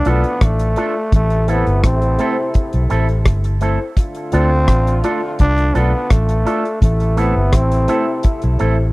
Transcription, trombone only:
0, 0, Header, 1, 2, 480
1, 0, Start_track
1, 0, Tempo, 711744
1, 757, Time_signature, 4, 2, 24, 8
1, 6020, End_track
2, 0, Start_track
2, 0, Title_t, "Trombone"
2, 0, Program_c, 0, 57
2, 57, Note_on_c, 0, 59, 93
2, 302, Note_on_c, 0, 57, 84
2, 312, Note_off_c, 0, 59, 0
2, 769, Note_off_c, 0, 57, 0
2, 778, Note_on_c, 0, 57, 92
2, 1018, Note_on_c, 0, 59, 84
2, 1028, Note_off_c, 0, 57, 0
2, 1245, Note_off_c, 0, 59, 0
2, 1249, Note_on_c, 0, 60, 83
2, 1696, Note_off_c, 0, 60, 0
2, 2927, Note_on_c, 0, 60, 106
2, 3375, Note_off_c, 0, 60, 0
2, 3647, Note_on_c, 0, 62, 117
2, 3891, Note_on_c, 0, 59, 98
2, 3902, Note_off_c, 0, 62, 0
2, 4123, Note_on_c, 0, 57, 89
2, 4134, Note_off_c, 0, 59, 0
2, 4600, Note_off_c, 0, 57, 0
2, 4604, Note_on_c, 0, 57, 81
2, 4852, Note_on_c, 0, 59, 93
2, 4862, Note_off_c, 0, 57, 0
2, 5096, Note_on_c, 0, 60, 84
2, 5106, Note_off_c, 0, 59, 0
2, 5567, Note_off_c, 0, 60, 0
2, 6020, End_track
0, 0, End_of_file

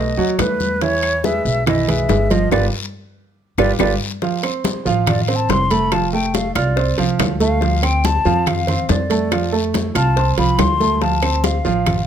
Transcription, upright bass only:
0, 0, Header, 1, 2, 480
1, 0, Start_track
1, 0, Tempo, 424929
1, 925, Time_signature, 4, 2, 24, 8
1, 13633, End_track
2, 0, Start_track
2, 0, Title_t, "Upright bass"
2, 0, Program_c, 0, 32
2, 0, Note_on_c, 0, 35, 89
2, 168, Note_off_c, 0, 35, 0
2, 198, Note_on_c, 0, 39, 60
2, 424, Note_off_c, 0, 39, 0
2, 435, Note_on_c, 0, 40, 87
2, 1572, Note_off_c, 0, 40, 0
2, 1639, Note_on_c, 0, 35, 86
2, 2318, Note_off_c, 0, 35, 0
2, 2357, Note_on_c, 0, 31, 92
2, 2808, Note_off_c, 0, 31, 0
2, 2842, Note_on_c, 0, 31, 97
2, 3023, Note_off_c, 0, 31, 0
2, 4043, Note_on_c, 0, 31, 83
2, 4223, Note_off_c, 0, 31, 0
2, 4285, Note_on_c, 0, 31, 91
2, 4465, Note_off_c, 0, 31, 0
2, 5489, Note_on_c, 0, 33, 86
2, 6162, Note_off_c, 0, 33, 0
2, 6204, Note_on_c, 0, 29, 83
2, 7336, Note_off_c, 0, 29, 0
2, 7411, Note_on_c, 0, 36, 84
2, 7855, Note_off_c, 0, 36, 0
2, 7885, Note_on_c, 0, 36, 67
2, 8109, Note_off_c, 0, 36, 0
2, 8128, Note_on_c, 0, 38, 97
2, 9258, Note_off_c, 0, 38, 0
2, 9324, Note_on_c, 0, 41, 89
2, 10000, Note_off_c, 0, 41, 0
2, 10046, Note_on_c, 0, 41, 89
2, 11177, Note_off_c, 0, 41, 0
2, 11240, Note_on_c, 0, 36, 90
2, 11690, Note_off_c, 0, 36, 0
2, 11722, Note_on_c, 0, 36, 68
2, 11947, Note_off_c, 0, 36, 0
2, 11957, Note_on_c, 0, 38, 94
2, 13093, Note_off_c, 0, 38, 0
2, 13162, Note_on_c, 0, 33, 85
2, 13633, Note_off_c, 0, 33, 0
2, 13633, End_track
0, 0, End_of_file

